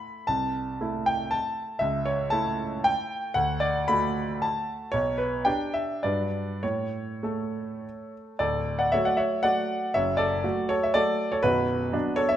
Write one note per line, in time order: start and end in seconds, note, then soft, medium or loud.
0.00 0.24 A3 soft
0.00 0.24 E4 soft
0.00 0.28 B5 medium
0.27 0.79 C2 soft
0.27 1.08 A5 medium
0.81 1.79 A3 soft
0.81 1.79 E4 medium
1.06 1.33 G5 medium
1.31 1.81 A5 medium
1.79 2.31 C#2 medium
1.79 2.06 E5 medium
2.06 2.33 C#5 medium
2.30 3.32 A3 soft
2.30 3.32 E4 medium
2.30 2.85 A5 medium
2.84 3.36 G5 medium
3.34 3.87 D2 medium
3.34 3.61 F#5 medium
3.60 3.88 D5 medium
3.88 4.89 A3 medium
3.88 4.89 F#4 medium
3.88 4.42 B5 loud
4.42 4.93 A5 medium
4.92 5.45 B1 medium
4.92 5.18 C#5 medium
5.18 5.46 B4 medium
5.45 6.00 D4 medium
5.45 6.00 G4 medium
5.45 5.74 G5 medium
5.74 6.04 E5 medium
6.03 6.61 G2 medium
6.03 6.59 F#3 soft
6.03 6.59 D4 soft
6.03 6.59 B4 soft
6.03 6.62 D5 medium
6.63 7.22 A2 medium
6.63 8.13 C#5 medium
7.23 8.36 A3 soft
7.23 8.36 A4 medium
8.39 8.91 D1 soft
8.39 8.91 D2 medium
8.39 8.76 A4 medium
8.39 8.78 D5 medium
8.79 8.92 D5 medium
8.79 8.92 F#5 medium
8.92 9.41 F#3 soft
8.92 9.42 A3 medium
8.92 9.42 F#4 medium
8.92 9.05 C#5 medium
8.92 9.06 E5 medium
9.05 9.19 D5 medium
9.05 9.19 F#5 medium
9.17 9.42 C#5 medium
9.17 9.44 E5 medium
9.43 9.90 F#3 soft
9.43 9.90 A3 soft
9.43 9.91 F#4 soft
9.43 9.91 D5 medium
9.43 9.94 F#5 medium
9.94 10.43 F#1 soft
9.94 10.43 F#2 medium
9.94 10.17 C#5 medium
9.94 10.19 E5 medium
10.17 10.66 A4 medium
10.17 10.69 D5 medium
10.44 10.92 F#3 soft
10.44 10.92 A3 soft
10.44 10.92 F#4 medium
10.69 10.82 A4 medium
10.69 10.82 C#5 medium
10.83 10.96 C#5 medium
10.83 10.96 E5 medium
10.94 11.41 F#3 soft
10.94 11.41 A3 soft
10.94 11.41 F#4 soft
10.94 11.30 A4 medium
10.94 11.32 D5 medium
11.32 11.44 A4 medium
11.32 11.44 C#5 medium
11.43 11.92 B0 medium
11.43 11.92 B1 medium
11.43 12.14 F#4 medium
11.43 12.17 B4 loud
11.92 12.37 F#3 medium
11.92 12.37 B3 medium
11.92 12.37 D4 medium
12.16 12.29 A4 medium
12.16 12.28 C#5 medium
12.29 12.37 C#5 medium
12.29 12.37 E5 medium